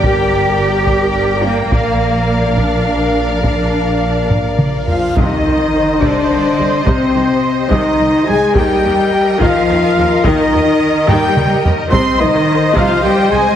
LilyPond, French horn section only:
\new Staff \with { instrumentName = "French horn section" } { \time 6/8 \key bes \major \tempo 4. = 71 <bes' d''>2. | <bes' d''>2.~ | <bes' d''>2~ <bes' d''>8 f'8 | \key c \minor ees'4. d'4. |
c'4. ees'4 aes'8 | g'4. f'4. | ees'4. g'4 r8 | c''8 ees'4 f'8 g'8 aes'8 | }